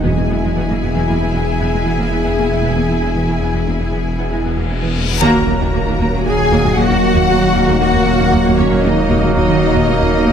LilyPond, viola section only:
\new Staff \with { instrumentName = "Viola section" } { \time 5/4 \key ees \phrygian \tempo 4 = 116 << { e'1~ e'4~ | e'1~ e'8 r8 | ges'1~ ges'4~ | ges'1~ ges'4 | } \\ { b16 bes16 b16 gis16 b16 bes16 b16 b16 bes16 b16 b16 r16 b16 gis16 b16 bes16 b16 b16 bes16 b16 | b16 bes16 b16 gis16 b16 bes16 b16 b16 bes16 b16 b16 r16 b16 gis16 b16 bes16 b16 b16 bes16 b16 | bes16 bes16 ges16 bes16 bes16 bes16 bes16 ges16 bes16 r16 bes16 bes16 ges16 bes16 r16 bes16 bes16 ges16 bes16 bes16 | bes16 bes16 ges16 bes16 bes16 bes16 bes16 ges16 bes16 r16 bes16 bes16 ges16 bes16 r16 bes16 bes16 ges16 bes16 bes16 | } >> }